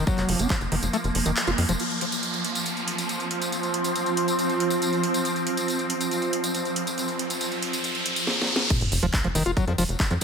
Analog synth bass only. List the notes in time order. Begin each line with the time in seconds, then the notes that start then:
0.18 F1
0.29 F1
0.39 F1
0.61 F1
0.72 F1
0.83 F1
1.04 F1
1.15 F1
1.26 F1
1.47 F1
1.58 F2
1.69 F1
8.81 F1
8.92 F1
9.03 F1
9.24 F1
9.35 F1
9.46 F1
9.68 F2
9.78 F1
9.89 F1
10.11 F2